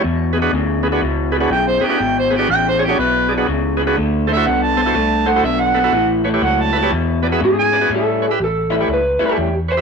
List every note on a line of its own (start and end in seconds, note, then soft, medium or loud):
0.03 0.31 E2 medium
0.03 0.51 E2 medium
0.03 0.31 B2 medium
0.33 0.51 E2 medium
0.33 0.51 B2 medium
0.33 0.38 G#4 medium
0.33 0.38 B4 loud
0.42 0.52 D4 medium
0.42 0.52 F#4 medium
0.42 0.52 G#4 medium
0.42 0.52 B4 medium
0.53 1.00 D2 loud
0.53 0.81 E2 medium
0.53 0.81 C#3 loud
0.83 1.00 E2 medium
0.83 1.00 C#3 medium
0.83 0.88 G#4 medium
0.83 0.88 B4 loud
0.92 1.01 D4 medium
0.92 1.01 F#4 medium
0.92 1.01 G#4 medium
0.92 1.01 B4 medium
1.02 1.49 C#2 medium
1.02 1.30 E2 medium
1.02 1.30 B2 medium
1.32 1.49 E2 medium
1.32 1.49 B2 medium
1.32 1.37 G#4 medium
1.32 1.37 B4 loud
1.40 1.50 D4 medium
1.40 1.50 F#4 medium
1.40 1.50 G#4 medium
1.40 1.50 B4 medium
1.50 1.80 B1 medium
1.50 1.79 E2 medium
1.50 1.79 C#3 loud
1.50 1.67 G5 loud
1.67 1.86 C5 loud
1.81 1.98 E2 medium
1.81 1.98 C#3 medium
1.81 2.03 G4 medium
1.81 1.86 G#4 medium
1.81 1.86 B4 medium
1.89 1.99 D4 medium
1.89 1.99 F#4 medium
1.89 1.99 G#4 medium
1.89 1.99 B4 medium
1.99 2.48 G#1 medium
1.99 2.28 E2 medium
1.99 2.28 B2 medium
1.99 2.16 G5 medium
2.19 2.33 C5 medium
2.30 2.47 E2 medium
2.30 2.48 B2 medium
2.30 2.35 G#4 medium
2.30 2.35 B4 medium
2.36 2.48 D4 medium
2.36 2.48 F#4 medium
2.36 2.50 G4 medium
2.36 2.48 G#4 medium
2.36 2.48 B4 medium
2.49 2.97 A1 medium
2.49 2.77 E2 medium
2.49 2.77 C#3 loud
2.49 2.65 G5 loud
2.68 2.83 C5 medium
2.79 2.97 E2 medium
2.79 2.97 C#3 medium
2.79 2.84 G#4 medium
2.79 2.84 C#5 medium
2.84 2.98 G4 medium
2.88 2.98 D4 medium
2.88 2.98 F#4 medium
2.88 2.98 G#4 medium
2.88 2.98 C#5 medium
2.99 3.46 B1 medium
2.99 3.27 E2 medium
2.99 3.27 B2 loud
2.99 3.29 B4 loud
3.29 3.46 E2 medium
3.29 3.46 B2 medium
3.29 3.34 G#4 medium
3.29 3.34 D5 medium
3.38 3.47 D4 medium
3.38 3.47 F#4 medium
3.38 3.47 G#4 medium
3.38 3.47 B4 medium
3.47 3.96 C#2 medium
3.47 3.75 E2 medium
3.47 3.76 C#3 loud
3.77 3.95 E2 medium
3.77 3.95 C#3 medium
3.77 3.82 G#4 medium
3.77 3.82 B4 medium
3.87 3.96 D4 medium
3.87 3.96 F#4 medium
3.87 3.96 G#4 medium
3.87 3.96 B4 medium
3.97 4.45 D2 medium
3.97 4.25 D3 medium
3.97 4.25 A3 medium
4.27 4.44 D3 medium
4.27 4.44 A3 medium
4.27 4.32 A4 medium
4.27 4.32 C5 medium
4.33 4.46 E4 medium
4.33 4.46 F#4 medium
4.33 4.46 C5 medium
4.33 4.49 E5 loud
4.37 4.46 A4 medium
4.46 4.94 C2 loud
4.46 4.74 D3 medium
4.46 4.74 B3 loud
4.46 4.62 F#5 medium
4.63 5.29 A5 loud
4.77 4.93 D3 medium
4.77 4.93 B3 medium
4.77 4.81 A4 medium
4.77 4.81 C5 medium
4.86 4.95 E4 medium
4.86 4.95 F#4 medium
4.86 4.95 A4 medium
4.86 4.95 C5 medium
4.95 5.43 C2 medium
4.95 5.23 D3 medium
4.95 5.23 A3 loud
5.26 5.42 D3 medium
5.26 5.42 A3 medium
5.26 5.30 A4 medium
5.26 5.31 C5 medium
5.26 5.44 F#5 loud
5.36 5.44 E4 medium
5.36 5.44 F#4 medium
5.36 5.44 A4 medium
5.36 5.44 C5 medium
5.43 5.91 B1 medium
5.43 5.72 D3 medium
5.43 5.72 B3 loud
5.43 5.62 E5 loud
5.60 6.08 F#5 loud
5.74 5.92 D3 medium
5.74 5.92 B3 medium
5.74 5.79 A4 medium
5.74 5.79 B4 medium
5.84 5.93 E4 medium
5.84 5.93 F#4 medium
5.84 5.93 A4 medium
5.84 5.93 B4 medium
5.93 6.41 A1 medium
5.93 6.21 A2 medium
5.93 6.22 E3 loud
6.24 6.40 A2 medium
6.24 6.40 E3 medium
6.24 6.29 B4 medium
6.24 6.29 C#5 loud
6.34 6.42 E4 medium
6.34 6.42 G4 medium
6.34 6.42 B4 medium
6.34 6.42 C#5 medium
6.42 6.90 C#2 loud
6.42 6.70 A2 medium
6.42 6.71 F#3 medium
6.42 6.63 F#5 loud
6.61 6.92 A5 loud
6.73 6.90 A2 medium
6.73 6.90 F#3 medium
6.73 6.78 B4 medium
6.73 6.77 E5 medium
6.82 6.91 E4 medium
6.82 6.91 G4 medium
6.82 6.91 B4 medium
6.82 6.91 C#5 medium
6.90 7.19 E2 medium
6.90 7.39 E2 medium
6.90 7.19 B2 loud
7.22 7.38 E2 medium
7.22 7.39 B2 medium
7.22 7.27 B4 medium
7.22 7.27 D5 medium
7.32 7.41 F#4 medium
7.32 7.41 G#4 medium
7.32 7.41 B4 medium
7.32 7.41 E5 medium
7.40 7.68 E2 loud
7.40 7.89 G#2 medium
7.40 7.69 C#3 loud
7.45 7.88 G#4 medium
7.59 7.90 G#5 loud
7.72 7.88 E2 medium
7.72 7.88 C#3 medium
7.72 7.77 B4 medium
7.72 7.77 D5 medium
7.81 7.90 F#4 medium
7.81 7.90 G#4 medium
7.81 7.90 B4 medium
7.81 7.90 D5 medium
7.90 8.37 A2 medium
7.90 8.26 A2 medium
7.90 8.27 G3 medium
7.90 8.27 C#4 medium
7.90 8.27 E4 medium
7.96 8.43 A4 medium
8.22 8.26 B4 medium
8.22 8.26 C#5 medium
8.31 8.39 E4 medium
8.31 8.39 G4 medium
8.31 8.40 B4 medium
8.31 8.39 E5 medium
8.40 8.87 A1 loud
8.44 8.92 A4 medium
8.70 8.98 A2 medium
8.70 8.98 G3 medium
8.70 8.98 C#4 medium
8.70 8.97 E4 medium
8.70 8.76 B4 medium
8.70 8.75 E5 medium
8.80 8.89 E4 medium
8.80 8.89 G4 medium
8.80 8.89 B4 medium
8.80 8.89 C#5 medium
8.88 9.17 C#2 medium
8.93 9.24 B4 medium
9.19 9.47 A2 medium
9.19 9.47 G3 medium
9.19 9.47 C#4 medium
9.19 9.47 E4 medium
9.19 9.24 B4 medium
9.19 9.24 C#5 medium
9.26 9.38 E4 medium
9.26 9.54 G4 medium
9.26 9.38 G4 medium
9.26 9.38 B4 medium
9.26 9.38 C#5 medium
9.38 9.81 E2 medium
9.68 9.73 B4 medium
9.68 9.81 C5 medium
9.68 9.73 C#5 medium
9.77 9.81 E4 medium
9.77 9.81 G4 soft
9.77 9.81 B4 medium
9.77 9.81 E5 medium